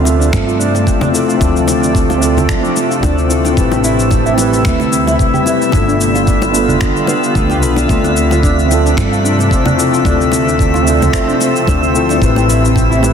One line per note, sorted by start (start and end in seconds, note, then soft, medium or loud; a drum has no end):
0.00 0.29 D2 medium
0.00 5.69 C3 medium
0.00 3.52 F3 medium
0.00 5.69 A3 medium
0.00 0.02 C4 medium
0.00 1.09 C4 medium
0.00 3.52 D4 medium
0.00 0.07 F4 medium
0.00 0.09 A4 loud
0.00 0.04 E5 medium
0.00 13.13 E5 medium
0.00 13.13 E6 medium
0.04 0.18 C4 medium
0.04 1.11 F4 medium
0.04 1.10 E5 medium
0.04 high bongo soft
0.04 shaker medium
0.09 1.13 A4 loud
0.20 0.27 D4 loud
0.20 shaker soft
0.33 0.83 G2 medium
0.33 finger snap medium
0.33 kick loud
0.33 high bongo medium
0.33 shaker soft
0.47 0.54 F4 medium
0.47 shaker soft
0.59 0.73 D4 medium
0.59 shaker medium
0.75 high bongo soft
0.75 shaker soft
0.87 1.00 C4 medium
0.87 kick medium
0.87 shaker soft
1.01 1.08 D4 loud
1.01 high bongo medium
1.01 low conga medium
1.01 shaker soft
1.12 1.36 C4 medium
1.12 1.37 E4 medium
1.12 1.38 F4 medium
1.12 1.38 A4 medium
1.12 shaker medium
1.28 1.35 F4 medium
1.28 shaker soft
1.37 2.17 C4 medium
1.37 1.54 D4 loud
1.37 2.18 E5 medium
1.37 kick loud
1.41 2.45 D2 medium
1.41 2.19 F4 medium
1.41 2.21 A4 medium
1.41 high bongo medium
1.41 shaker soft
1.56 shaker soft
1.68 1.81 C4 medium
1.68 high bongo medium
1.68 shaker medium
1.82 1.89 D4 medium
1.82 shaker soft
1.95 kick loud
1.95 shaker soft
2.10 2.16 F4 medium
2.10 high bongo medium
2.10 shaker soft
2.18 3.25 C4 medium
2.18 2.35 D4 medium
2.18 3.26 E5 medium
2.23 3.27 F4 medium
2.23 3.29 A4 loud
2.23 shaker medium
2.37 high bongo medium
2.37 low conga medium
2.37 shaker soft
2.49 2.62 C4 medium
2.49 finger snap medium
2.49 kick loud
2.49 shaker soft
2.63 2.70 D4 medium
2.63 shaker soft
2.76 high bongo soft
2.76 shaker medium
2.90 2.97 F4 medium
2.90 shaker soft
3.03 3.53 D2 medium
3.03 3.16 D4 medium
3.03 kick loud
3.03 high bongo medium
3.03 shaker soft
3.18 shaker soft
3.28 3.52 C4 medium
3.28 3.43 C4 medium
3.28 3.53 E4 medium
3.28 3.54 F4 medium
3.28 3.55 A4 medium
3.28 shaker medium
3.45 3.51 D4 medium
3.45 high bongo soft
3.45 shaker soft
3.53 7.85 G3 medium
3.53 4.33 C4 medium
3.53 4.34 E4 medium
3.53 5.71 E4 medium
3.57 4.61 A1 medium
3.57 4.35 G4 medium
3.57 4.36 B4 loud
3.57 kick loud
3.57 shaker soft
3.72 3.78 G4 medium
3.72 high bongo medium
3.72 shaker soft
3.84 3.97 E4 medium
3.84 shaker medium
3.99 shaker soft
4.11 4.24 C4 medium
4.11 kick loud
4.11 high bongo soft
4.11 shaker soft
4.26 4.32 E4 medium
4.26 shaker soft
4.34 5.41 C4 medium
4.34 5.42 E4 medium
4.34 high bongo medium
4.39 5.43 G4 medium
4.39 5.45 B4 medium
4.39 shaker medium
4.53 4.59 G4 medium
4.53 shaker soft
4.65 5.15 D2 medium
4.65 4.79 E4 medium
4.65 finger snap medium
4.65 kick loud
4.65 shaker soft
4.80 high bongo medium
4.80 shaker soft
4.92 5.05 C4 medium
4.92 shaker medium
5.07 5.13 E4 medium
5.07 high bongo medium
5.07 shaker soft
5.19 kick loud
5.19 shaker soft
5.34 5.40 G4 medium
5.34 low conga medium
5.34 shaker soft
5.44 5.69 C4 medium
5.44 5.70 E4 medium
5.44 5.60 E4 medium
5.44 5.70 G4 medium
5.44 5.71 B4 medium
5.44 high bongo soft
5.44 shaker medium
5.62 shaker soft
5.70 6.77 G1 medium
5.70 7.87 D3 medium
5.70 6.49 B3 medium
5.70 7.87 B3 medium
5.70 5.86 B3 medium
5.70 6.51 D4 medium
5.70 7.87 F4 medium
5.70 kick loud
5.70 high bongo medium
5.74 6.52 F4 medium
5.74 6.53 A4 medium
5.74 shaker soft
5.88 5.95 D4 medium
5.88 shaker soft
6.01 shaker medium
6.15 6.22 F4 medium
6.15 high bongo soft
6.15 shaker soft
6.27 6.41 D4 medium
6.27 kick loud
6.27 shaker soft
6.42 high bongo medium
6.42 shaker soft
6.51 7.57 B3 medium
6.51 6.68 B3 medium
6.51 7.59 D4 medium
6.55 7.60 F4 medium
6.55 7.61 A4 medium
6.55 shaker medium
6.69 6.76 D4 medium
6.69 low conga medium
6.69 shaker soft
6.81 finger snap medium
6.81 kick loud
6.81 high bongo medium
6.81 shaker soft
6.95 7.02 F4 medium
6.95 shaker soft
7.07 7.21 B4 medium
7.07 high bongo medium
7.07 shaker medium
7.23 shaker soft
7.35 7.62 D2 medium
7.35 7.49 B3 medium
7.35 kick loud
7.35 shaker soft
7.50 7.57 G4 loud
7.50 high bongo soft
7.50 shaker soft
7.61 7.84 B1 medium
7.61 7.85 B3 medium
7.61 7.86 D4 medium
7.61 7.87 F4 medium
7.61 7.87 A4 medium
7.61 7.76 B4 loud
7.61 shaker medium
7.76 7.88 D4 medium
7.76 high bongo medium
7.76 shaker soft
7.85 12.17 F3 medium
7.85 13.13 A3 medium
7.85 8.65 C4 medium
7.85 10.03 D4 medium
7.85 8.67 E5 medium
7.89 8.93 D2 medium
7.89 13.13 C3 medium
7.89 8.03 C4 medium
7.89 8.68 F4 medium
7.89 8.69 A4 medium
7.89 kick loud
7.89 shaker soft
8.04 8.11 D4 loud
8.04 high bongo soft
8.04 shaker soft
8.17 shaker medium
8.31 8.38 F4 medium
8.31 high bongo medium
8.31 shaker soft
8.43 8.56 D4 medium
8.43 kick loud
8.43 shaker soft
8.59 shaker soft
8.66 9.73 C4 medium
8.66 9.75 E5 medium
8.71 8.84 C4 medium
8.71 9.76 F4 medium
8.71 9.77 A4 loud
8.71 high bongo soft
8.71 shaker medium
8.86 8.92 D4 loud
8.86 shaker soft
8.97 9.47 G2 medium
8.97 finger snap medium
8.97 kick loud
8.97 high bongo medium
8.97 shaker soft
9.12 9.19 F4 medium
9.12 shaker soft
9.25 9.38 D4 medium
9.25 shaker medium
9.39 high bongo soft
9.39 shaker soft
9.51 9.65 C4 medium
9.51 kick loud
9.51 shaker soft
9.66 9.73 D4 loud
9.66 high bongo medium
9.66 low conga medium
9.66 shaker soft
9.76 10.00 C4 medium
9.76 10.02 E4 medium
9.76 10.03 F4 medium
9.76 10.03 A4 medium
9.76 shaker medium
9.94 10.00 F4 medium
9.94 shaker soft
10.01 11.09 D2 medium
10.01 10.81 C4 medium
10.01 10.83 E5 medium
10.01 kick loud
10.05 12.19 C4 medium
10.05 10.19 D4 loud
10.05 10.84 F4 medium
10.05 10.85 A4 loud
10.05 high bongo soft
10.05 shaker soft
10.21 shaker soft
10.32 10.46 C4 medium
10.32 high bongo medium
10.32 shaker medium
10.47 10.54 D4 medium
10.47 shaker soft
10.59 kick medium
10.59 shaker soft
10.74 10.81 F4 medium
10.74 high bongo soft
10.74 shaker soft
10.82 11.90 C4 medium
10.82 11.91 E5 medium
10.87 11.00 D4 medium
10.87 11.92 F4 medium
10.87 11.93 A4 loud
10.87 shaker medium
11.01 high bongo medium
11.01 low conga medium
11.01 shaker soft
11.13 11.27 C4 medium
11.13 finger snap medium
11.13 kick loud
11.13 shaker soft
11.28 11.35 D4 medium
11.28 shaker soft
11.41 high bongo soft
11.41 shaker medium
11.56 11.62 F4 medium
11.56 shaker soft
11.67 12.18 D2 loud
11.67 11.81 D4 medium
11.67 kick medium
11.67 high bongo medium
11.67 shaker soft
11.83 shaker soft
11.93 12.16 C4 medium
11.93 12.08 C4 medium
11.93 12.18 E4 medium
11.93 12.19 F4 medium
11.93 12.20 A4 medium
11.93 shaker medium
12.09 12.16 D4 medium
12.09 high bongo soft
12.09 shaker soft
12.18 13.13 G3 medium
12.18 12.97 C4 medium
12.18 12.99 E4 medium
12.18 13.13 E4 medium
12.22 13.13 A1 medium
12.22 13.00 G4 medium
12.22 13.02 B4 loud
12.22 kick loud
12.22 shaker soft
12.36 12.44 G4 medium
12.36 high bongo medium
12.36 shaker soft
12.49 12.62 E4 loud
12.49 shaker medium
12.65 shaker soft
12.76 12.89 C4 medium
12.76 kick medium
12.76 high bongo soft
12.76 shaker soft
12.91 12.97 E4 medium
12.91 shaker soft
12.98 13.13 C4 medium
12.98 13.13 E4 medium
13.03 13.13 G4 medium
13.03 13.13 B4 medium
13.03 high bongo medium
13.03 shaker medium